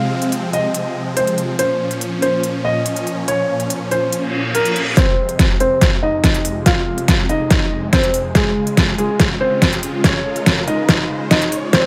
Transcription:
Already playing: C3 F3 G#3 C4 F5
0.22 closed hi-hat
0.32 closed hi-hat
0.53 D#5, closed hi-hat
0.74 closed hi-hat
1.17 C5, closed hi-hat
1.27 closed hi-hat
1.38 closed hi-hat
1.59 A#2 C#4 C5, closed hi-hat
1.91 closed hi-hat
2.01 closed hi-hat
2.22 C5, closed hi-hat
2.43 closed hi-hat
2.65 D#5
2.86 closed hi-hat
2.96 closed hi-hat
3.07 closed hi-hat
3.28 C#5, closed hi-hat
3.60 closed hi-hat
3.70 closed hi-hat
3.91 C5, closed hi-hat
4.12 closed hi-hat, reverse cymbal
4.55 A#4, closed hi-hat
4.65 closed hi-hat
4.76 closed hi-hat
4.97 F2 C3 G#3 C4 C5, kick, snare, closed hi-hat, riser
5.29 closed hi-hat
5.39 kick, snare, closed hi-hat
5.60 C4 C5, closed hi-hat
5.81 kick, snare, closed hi-hat
6.03 D#4 D#5
6.24 kick, snare, closed hi-hat
6.34 closed hi-hat
6.45 open hi-hat
6.66 F4 F5, kick, snare, closed hi-hat
6.98 closed hi-hat
7.08 kick, snare, closed hi-hat
7.29 D#4 D#5, closed hi-hat
7.50 kick, snare, closed hi-hat
7.93 C4 C5, kick, snare, closed hi-hat
8.03 closed hi-hat
8.14 open hi-hat
8.35 C#3 G#3 F4 G#4, kick, snare, closed hi-hat
8.67 closed hi-hat
8.77 kick, snare, closed hi-hat
8.98 G#3 G#4, closed hi-hat
9.20 kick, snare, closed hi-hat
9.41 C4 C5
9.62 kick, snare, closed hi-hat
9.72 closed hi-hat
9.83 open hi-hat
10.04 C#4 C#5, kick, snare, closed hi-hat
10.36 closed hi-hat
10.46 kick, snare, closed hi-hat
10.68 D#4 D#5, open hi-hat
10.89 kick, snare, closed hi-hat
11.31 D#4 D#5, kick, snare, closed hi-hat
11.42 closed hi-hat
11.52 open hi-hat
11.73 C3 F3 C4 C5, kick, snare, closed hi-hat

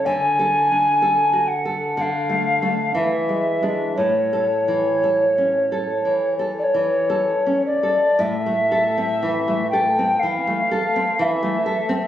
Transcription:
0.06 D3 G#5
0.39 A4
0.71 D4
1.02 A4
1.33 F#4
1.48 F#5
1.65 A4
1.97 D3 F#5
2.01 F5
2.29 A3
2.62 A3 D4
2.95 E3 E5
3.29 G#3
3.62 G#3 D4
3.97 A2 C#5
4.33 A4
4.68 E3
5.03 A4
5.38 C#4
5.72 A4
6.05 E3
6.39 A4
6.59 D5
6.64 C#5
6.74 E3
7.10 A4
7.46 C#4
7.66 D5
7.83 A4
8.19 A2 E5
8.46 A3
8.72 A4
8.98 C4
9.23 E3
9.48 A3
9.71 A4 G5
9.99 C4
10.20 E3 F5
10.47 A3
10.71 A4
10.96 C4
11.18 E3 E5 F5
11.43 A3
11.66 A4
11.89 C4

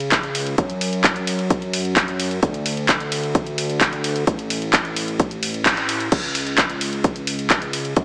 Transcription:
Already playing: C#2
0.00 closed hi-hat
0.12 kick, clap, closed hi-hat
0.23 closed hi-hat
0.35 open hi-hat, ride
0.47 closed hi-hat
0.58 F#2, kick, closed hi-hat
0.70 closed hi-hat
0.81 open hi-hat, ride
0.93 closed hi-hat
1.04 kick, clap, closed hi-hat
1.16 closed hi-hat
1.27 open hi-hat, ride
1.39 closed hi-hat
1.50 kick, closed hi-hat
1.62 closed hi-hat
1.73 open hi-hat, ride
1.85 closed hi-hat
1.96 kick, clap, closed hi-hat
2.08 closed hi-hat
2.20 open hi-hat, ride
2.31 closed hi-hat
2.43 D2, kick, closed hi-hat
2.54 closed hi-hat
2.66 open hi-hat, ride
2.77 closed hi-hat
2.89 kick, clap, closed hi-hat
3.00 closed hi-hat
3.12 open hi-hat, ride
3.23 closed hi-hat
3.35 kick, closed hi-hat
3.47 closed hi-hat
3.58 open hi-hat, ride
3.70 closed hi-hat
3.81 kick, clap, closed hi-hat
3.93 closed hi-hat
4.04 open hi-hat, ride
4.16 closed hi-hat
4.27 A1, kick, closed hi-hat
4.39 closed hi-hat
4.50 open hi-hat, ride
4.62 closed hi-hat
4.73 kick, clap, closed hi-hat
4.85 closed hi-hat
4.96 open hi-hat, ride
5.08 closed hi-hat
5.20 kick, closed hi-hat
5.31 closed hi-hat
5.43 open hi-hat, ride
5.54 closed hi-hat
5.66 kick, clap, closed hi-hat
5.77 closed hi-hat
5.89 open hi-hat, ride
6.00 closed hi-hat
6.12 C#2, kick, closed hi-hat, crash
6.24 closed hi-hat
6.35 open hi-hat, ride
6.47 closed hi-hat
6.58 kick, clap, closed hi-hat
6.70 closed hi-hat
6.81 open hi-hat, ride
6.93 closed hi-hat
7.04 kick, closed hi-hat
7.16 closed hi-hat
7.27 open hi-hat, ride
7.39 closed hi-hat
7.50 kick, clap, closed hi-hat
7.62 closed hi-hat
7.73 open hi-hat, ride
7.85 closed hi-hat
7.96 F#2, kick, closed hi-hat

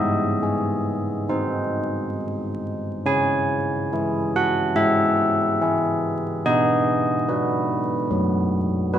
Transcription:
Already playing: G#3 D#5
0.43 G#4
1.29 D#4 C5
3.06 C#4 G#5
3.93 E4 G#4
4.36 F#5
4.75 G#3 E5
5.61 E4 G#4
6.46 B3 D#5
7.29 F#4 B4
8.11 F#3
8.94 F#4 B4

